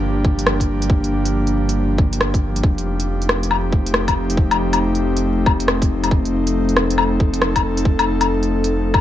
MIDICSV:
0, 0, Header, 1, 4, 480
1, 0, Start_track
1, 0, Tempo, 434783
1, 991, Time_signature, 4, 2, 24, 8
1, 9945, End_track
2, 0, Start_track
2, 0, Title_t, "Analog synth pad"
2, 0, Program_c, 0, 89
2, 0, Note_on_c, 0, 53, 80
2, 0, Note_on_c, 0, 55, 75
2, 0, Note_on_c, 0, 58, 74
2, 0, Note_on_c, 0, 62, 73
2, 0, Note_on_c, 0, 67, 88
2, 2860, Note_off_c, 0, 58, 0
2, 2861, Note_off_c, 0, 62, 0
2, 2862, Note_off_c, 0, 67, 0
2, 2863, Note_off_c, 0, 55, 0
2, 2908, Note_on_c, 0, 60, 74
2, 2908, Note_on_c, 0, 67, 91
2, 2909, Note_on_c, 0, 63, 74
2, 2910, Note_on_c, 0, 57, 76
2, 6711, Note_off_c, 0, 67, 0
2, 6739, Note_on_c, 0, 69, 91
2, 9945, Note_off_c, 0, 53, 0
2, 9945, Note_off_c, 0, 57, 0
2, 9945, Note_off_c, 0, 60, 0
2, 9945, Note_off_c, 0, 63, 0
2, 9945, Note_off_c, 0, 69, 0
2, 9945, End_track
3, 0, Start_track
3, 0, Title_t, "Sub bass"
3, 0, Program_c, 1, 38
3, 0, Note_on_c, 1, 31, 84
3, 2892, Note_off_c, 1, 31, 0
3, 2909, Note_on_c, 1, 29, 86
3, 9945, Note_off_c, 1, 29, 0
3, 9945, End_track
4, 0, Start_track
4, 0, Title_t, "Drums"
4, 270, Note_on_c, 9, 36, 104
4, 380, Note_off_c, 9, 36, 0
4, 427, Note_on_c, 9, 42, 52
4, 513, Note_on_c, 9, 37, 103
4, 537, Note_off_c, 9, 42, 0
4, 624, Note_off_c, 9, 37, 0
4, 663, Note_on_c, 9, 36, 60
4, 670, Note_on_c, 9, 42, 41
4, 774, Note_off_c, 9, 36, 0
4, 781, Note_off_c, 9, 42, 0
4, 906, Note_on_c, 9, 42, 53
4, 990, Note_on_c, 9, 36, 115
4, 1016, Note_off_c, 9, 42, 0
4, 1100, Note_off_c, 9, 36, 0
4, 1149, Note_on_c, 9, 42, 30
4, 1259, Note_off_c, 9, 42, 0
4, 1385, Note_on_c, 9, 42, 53
4, 1496, Note_off_c, 9, 42, 0
4, 1623, Note_on_c, 9, 42, 29
4, 1734, Note_off_c, 9, 42, 0
4, 1865, Note_on_c, 9, 42, 54
4, 1976, Note_off_c, 9, 42, 0
4, 2189, Note_on_c, 9, 36, 97
4, 2299, Note_off_c, 9, 36, 0
4, 2348, Note_on_c, 9, 42, 52
4, 2435, Note_on_c, 9, 37, 103
4, 2458, Note_off_c, 9, 42, 0
4, 2545, Note_off_c, 9, 37, 0
4, 2582, Note_on_c, 9, 36, 102
4, 2590, Note_on_c, 9, 42, 41
4, 2693, Note_off_c, 9, 36, 0
4, 2701, Note_off_c, 9, 42, 0
4, 2828, Note_on_c, 9, 42, 51
4, 2909, Note_on_c, 9, 36, 114
4, 2938, Note_off_c, 9, 42, 0
4, 3019, Note_off_c, 9, 36, 0
4, 3072, Note_on_c, 9, 42, 29
4, 3183, Note_off_c, 9, 42, 0
4, 3309, Note_on_c, 9, 42, 52
4, 3420, Note_off_c, 9, 42, 0
4, 3551, Note_on_c, 9, 42, 29
4, 3633, Note_on_c, 9, 37, 99
4, 3662, Note_off_c, 9, 42, 0
4, 3744, Note_off_c, 9, 37, 0
4, 3788, Note_on_c, 9, 42, 51
4, 3872, Note_on_c, 9, 77, 57
4, 3899, Note_off_c, 9, 42, 0
4, 3982, Note_off_c, 9, 77, 0
4, 4111, Note_on_c, 9, 36, 99
4, 4221, Note_off_c, 9, 36, 0
4, 4266, Note_on_c, 9, 42, 51
4, 4348, Note_on_c, 9, 37, 101
4, 4376, Note_off_c, 9, 42, 0
4, 4458, Note_off_c, 9, 37, 0
4, 4503, Note_on_c, 9, 42, 41
4, 4503, Note_on_c, 9, 77, 54
4, 4504, Note_on_c, 9, 36, 58
4, 4613, Note_off_c, 9, 42, 0
4, 4613, Note_off_c, 9, 77, 0
4, 4614, Note_off_c, 9, 36, 0
4, 4745, Note_on_c, 9, 42, 50
4, 4828, Note_on_c, 9, 36, 111
4, 4855, Note_off_c, 9, 42, 0
4, 4939, Note_off_c, 9, 36, 0
4, 4982, Note_on_c, 9, 42, 28
4, 4982, Note_on_c, 9, 77, 62
4, 5092, Note_off_c, 9, 42, 0
4, 5092, Note_off_c, 9, 77, 0
4, 5223, Note_on_c, 9, 42, 52
4, 5223, Note_on_c, 9, 77, 51
4, 5333, Note_off_c, 9, 42, 0
4, 5333, Note_off_c, 9, 77, 0
4, 5465, Note_on_c, 9, 42, 29
4, 5575, Note_off_c, 9, 42, 0
4, 5703, Note_on_c, 9, 42, 50
4, 5813, Note_off_c, 9, 42, 0
4, 6030, Note_on_c, 9, 36, 94
4, 6030, Note_on_c, 9, 77, 51
4, 6140, Note_off_c, 9, 36, 0
4, 6140, Note_off_c, 9, 77, 0
4, 6182, Note_on_c, 9, 42, 50
4, 6270, Note_on_c, 9, 37, 96
4, 6292, Note_off_c, 9, 42, 0
4, 6381, Note_off_c, 9, 37, 0
4, 6422, Note_on_c, 9, 36, 97
4, 6426, Note_on_c, 9, 42, 40
4, 6533, Note_off_c, 9, 36, 0
4, 6536, Note_off_c, 9, 42, 0
4, 6664, Note_on_c, 9, 42, 50
4, 6664, Note_on_c, 9, 77, 35
4, 6748, Note_on_c, 9, 36, 105
4, 6774, Note_off_c, 9, 42, 0
4, 6774, Note_off_c, 9, 77, 0
4, 6859, Note_off_c, 9, 36, 0
4, 6905, Note_on_c, 9, 42, 28
4, 7015, Note_off_c, 9, 42, 0
4, 7143, Note_on_c, 9, 42, 54
4, 7253, Note_off_c, 9, 42, 0
4, 7384, Note_on_c, 9, 42, 29
4, 7469, Note_on_c, 9, 37, 95
4, 7494, Note_off_c, 9, 42, 0
4, 7579, Note_off_c, 9, 37, 0
4, 7622, Note_on_c, 9, 42, 52
4, 7704, Note_on_c, 9, 77, 62
4, 7733, Note_off_c, 9, 42, 0
4, 7815, Note_off_c, 9, 77, 0
4, 7948, Note_on_c, 9, 36, 97
4, 8059, Note_off_c, 9, 36, 0
4, 8098, Note_on_c, 9, 42, 51
4, 8186, Note_on_c, 9, 37, 95
4, 8208, Note_off_c, 9, 42, 0
4, 8297, Note_off_c, 9, 37, 0
4, 8342, Note_on_c, 9, 36, 54
4, 8342, Note_on_c, 9, 42, 42
4, 8342, Note_on_c, 9, 77, 59
4, 8453, Note_off_c, 9, 36, 0
4, 8453, Note_off_c, 9, 42, 0
4, 8453, Note_off_c, 9, 77, 0
4, 8581, Note_on_c, 9, 42, 51
4, 8669, Note_on_c, 9, 36, 109
4, 8692, Note_off_c, 9, 42, 0
4, 8780, Note_off_c, 9, 36, 0
4, 8822, Note_on_c, 9, 42, 29
4, 8822, Note_on_c, 9, 77, 66
4, 8932, Note_off_c, 9, 42, 0
4, 8932, Note_off_c, 9, 77, 0
4, 9063, Note_on_c, 9, 42, 56
4, 9063, Note_on_c, 9, 77, 54
4, 9173, Note_off_c, 9, 42, 0
4, 9173, Note_off_c, 9, 77, 0
4, 9305, Note_on_c, 9, 42, 30
4, 9415, Note_off_c, 9, 42, 0
4, 9540, Note_on_c, 9, 42, 54
4, 9651, Note_off_c, 9, 42, 0
4, 9868, Note_on_c, 9, 77, 53
4, 9870, Note_on_c, 9, 36, 94
4, 9945, Note_off_c, 9, 36, 0
4, 9945, Note_off_c, 9, 77, 0
4, 9945, End_track
0, 0, End_of_file